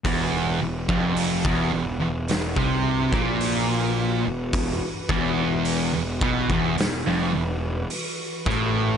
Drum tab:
HH |o---o---o---o---|o---o---o---o---|
SD |--------o-------|--------o-----o-|
BD |o--o-o---o-o----|o-o---oo------o-|